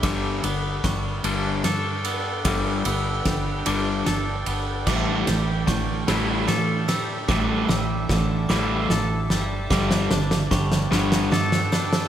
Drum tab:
CC |------------|------------|x-----------|------------|
RD |x-x-x-x-x-x-|x-x-x-x-x-x-|--x-x-x-x-x-|------------|
SD |o---o---o---|o---o---o---|o-o-o-o-o-o-|o-o-o-o-o-o-|
BD |o---o-------|o---o-------|o---o-------|o---o-------|

CC |------------|
RD |------------|
SD |oooooooooooo|
BD |o---o-------|